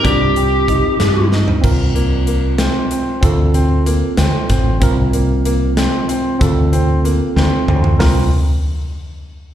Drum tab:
CC |----------|x---------|----------|----------|
HH |x-x-x-x---|--x-x-x-x-|x-x-x-x-x-|x-x-x-x-x-|
SD |------o-o-|------o---|------o-o-|------o---|
T2 |----------|----------|----------|----------|
FT |---------o|----------|----------|----------|
BD |o---o-----|o---------|o-------o-|o---------|

CC |----------|----------|
HH |x-x-x-----|o---------|
SD |------o---|o---------|
T2 |--------o-|----------|
FT |---------o|o---------|
BD |o---------|----------|